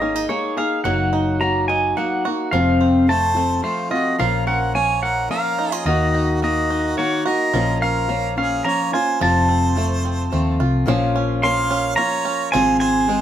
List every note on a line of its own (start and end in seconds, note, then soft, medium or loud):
0.00 0.25 G#1 medium
0.00 0.85 G#3 medium
0.00 0.29 A#3 soft
0.00 0.27 A#3 soft
0.00 0.16 C#4 soft
0.00 0.28 D#4 soft
0.00 0.28 G#4 soft
0.00 0.26 D#5 medium
0.16 0.91 D#4 soft
0.28 0.56 G#3 soft
0.28 0.57 A#3 medium
0.28 0.91 A#3 soft
0.28 0.57 D#4 medium
0.28 0.56 G#4 medium
0.28 0.58 C#5 medium
0.57 0.83 A#3 soft
0.57 0.84 D#4 soft
0.57 0.85 G#4 soft
0.57 0.91 G#4 medium
0.57 0.84 F5 medium
0.84 1.92 F#1 medium
0.84 1.39 F#3 medium
0.84 2.52 F#3 medium
0.84 1.39 A#3 medium
0.84 1.40 D#4 medium
0.84 1.41 F#4 medium
0.84 1.42 F#5 medium
1.13 1.68 D#4 medium
1.40 1.95 F#3 soft
1.40 1.96 A#3 medium
1.40 1.96 A#3 soft
1.40 1.97 D#4 soft
1.40 1.97 F#4 medium
1.40 1.67 A#5 medium
1.68 2.58 D#4 medium
1.68 1.97 G#5 loud
1.97 2.24 F#3 medium
1.97 2.58 A#3 medium
1.97 2.25 A#3 soft
1.97 2.25 D#4 medium
1.97 2.25 F#4 medium
1.97 2.49 F#5 medium
2.25 2.53 A#3 soft
2.25 2.53 D#4 soft
2.25 2.58 F#4 medium
2.25 2.53 F#4 soft
2.51 3.60 F1 medium
2.51 3.08 F2 medium
2.51 3.08 C3 medium
2.51 4.18 F3 medium
2.51 3.06 F3 medium
2.51 3.07 A3 medium
2.51 3.07 C4 medium
2.51 3.09 F4 medium
2.51 3.09 F5 medium
2.81 3.35 C4 soft
3.07 3.35 F3 soft
3.07 3.35 A3 soft
3.07 3.63 A3 soft
3.07 3.35 C4 medium
3.07 3.33 F4 medium
3.07 3.59 C5 medium
3.07 3.66 A5 medium
3.35 3.61 F3 soft
3.35 3.62 A3 soft
3.35 3.62 C4 soft
3.35 4.25 C4 medium
3.35 3.63 F4 soft
3.62 3.91 F3 medium
3.62 3.91 A3 medium
3.62 4.25 A3 soft
3.62 3.90 C4 medium
3.62 3.89 F4 medium
3.62 3.90 C5 medium
3.90 4.17 F3 soft
3.90 4.19 A3 soft
3.90 4.19 C4 soft
3.90 4.18 F4 soft
3.90 4.25 F4 medium
3.90 4.18 F#4 medium
3.90 4.20 D#5 medium
4.18 5.27 A#1 medium
4.18 4.75 A#2 medium
4.18 4.73 F3 medium
4.18 5.86 F3 medium
4.18 4.74 A#3 medium
4.18 4.74 C#4 medium
4.18 4.75 F4 medium
4.18 4.45 A#4 medium
4.18 4.45 F5 medium
4.47 5.02 C#4 medium
4.47 4.73 A#4 medium
4.47 4.76 F#5 medium
4.74 5.28 F3 soft
4.74 5.30 A#3 medium
4.74 5.29 C#4 medium
4.74 5.30 F4 medium
4.74 5.01 C#5 medium
4.74 5.02 G#5 medium
5.03 5.92 C#4 medium
5.03 5.29 A#4 medium
5.03 5.31 F#5 medium
5.29 5.86 F3 soft
5.29 5.87 A#3 medium
5.29 6.42 A#3 medium
5.29 5.86 C#4 medium
5.29 5.87 F4 medium
5.29 5.82 A#4 medium
5.29 5.76 F5 medium
5.59 5.72 D#4 medium
5.72 5.92 F4 medium
5.72 5.86 D#5 medium
5.85 6.93 D#2 medium
5.85 7.53 D#3 medium
5.85 6.42 D#3 medium
5.85 6.42 A#3 medium
5.85 6.42 D#4 medium
5.85 6.38 F#4 medium
5.85 6.42 F#4 medium
5.85 6.38 D#5 medium
6.14 6.69 D#4 medium
6.42 6.96 D#3 soft
6.42 6.96 A#3 soft
6.42 6.97 A#3 medium
6.42 6.97 D#4 medium
6.42 6.94 F#4 medium
6.42 6.98 F#4 medium
6.42 6.95 D#5 medium
6.70 7.59 D#4 medium
6.97 7.25 D#3 medium
6.97 7.59 A#3 medium
6.97 7.26 A#3 medium
6.97 7.25 D#4 medium
6.97 7.23 F#4 medium
6.97 7.25 F#4 medium
6.97 7.24 C#5 medium
7.26 7.53 A#3 soft
7.26 7.54 D#4 soft
7.26 7.59 F#4 medium
7.26 7.54 F#4 soft
7.26 7.78 A#4 medium
7.26 7.83 D#5 medium
7.54 8.61 A#1 medium
7.54 8.09 A#2 medium
7.54 9.20 F3 medium
7.54 8.08 F3 medium
7.54 8.08 A#3 medium
7.54 8.09 C#4 medium
7.54 8.10 F4 medium
7.81 8.36 C#4 soft
7.81 8.33 A#4 medium
7.81 8.37 F5 medium
8.09 8.37 F3 medium
8.09 8.64 A#3 soft
8.09 8.37 A#3 medium
8.09 8.36 C#4 medium
8.09 8.35 F4 medium
8.36 8.65 A#3 soft
8.36 8.65 C#4 soft
8.36 9.26 C#4 soft
8.36 8.64 F4 soft
8.36 8.64 G#4 medium
8.36 8.66 F5 medium
8.65 8.92 F3 medium
8.65 9.26 A#3 medium
8.65 8.93 A#3 medium
8.65 8.93 C#4 medium
8.65 8.91 F4 medium
8.65 8.92 C#5 medium
8.65 8.93 A#5 medium
8.92 9.20 A#3 soft
8.92 9.20 C#4 soft
8.92 9.20 F4 soft
8.92 9.27 F4 medium
8.92 9.19 C5 medium
8.92 9.19 G#5 medium
9.20 10.28 F1 medium
9.20 9.76 F2 medium
9.20 9.76 C3 medium
9.20 9.74 F3 medium
9.20 10.87 F3 medium
9.20 9.75 A3 medium
9.20 9.76 C4 medium
9.20 9.76 F4 medium
9.20 10.56 C5 medium
9.20 10.56 A5 medium
9.49 10.04 C4 medium
9.75 10.30 F3 medium
9.75 10.31 A3 medium
9.75 10.31 A3 soft
9.75 10.31 C4 soft
9.75 10.32 F4 medium
10.05 10.93 C4 soft
10.32 10.57 D#2 medium
10.32 10.85 F3 medium
10.32 10.86 A3 medium
10.32 10.93 A3 soft
10.32 10.87 C4 medium
10.32 10.86 F4 medium
10.60 10.85 C2 medium
10.60 10.93 F4 medium
10.86 11.94 A#1 medium
10.86 11.42 A#2 medium
10.86 11.42 F3 medium
10.86 12.52 F3 medium
10.86 11.42 A#3 medium
10.86 11.42 C#4 medium
10.86 11.44 F4 medium
11.16 11.69 C#4 medium
11.42 11.96 F3 medium
11.42 12.59 A#3 medium
11.42 11.96 A#3 medium
11.42 11.97 C#4 medium
11.42 11.98 F4 medium
11.42 11.95 F5 medium
11.42 11.96 C6 loud
11.71 12.24 C#4 medium
11.96 12.53 F3 medium
11.96 12.53 A#3 medium
11.96 12.54 C#4 medium
11.96 12.59 F4 medium
11.96 12.54 F4 medium
11.96 12.49 C#5 medium
11.96 12.54 A#5 medium
12.25 12.59 C#4 medium
12.51 13.21 G#1 medium
12.51 13.21 F3 medium
12.51 13.06 G#3 medium
12.51 13.08 C4 medium
12.51 13.08 F4 medium
12.51 12.78 C5 medium
12.51 12.79 G#5 medium
12.55 13.09 G#4 medium
12.79 13.21 C4 medium
12.79 13.21 C5 medium
12.79 13.21 G#5 medium
13.08 13.21 G#3 medium
13.08 13.21 G#3 soft
13.08 13.21 C4 medium
13.08 13.21 F4 medium
13.08 13.21 G#4 medium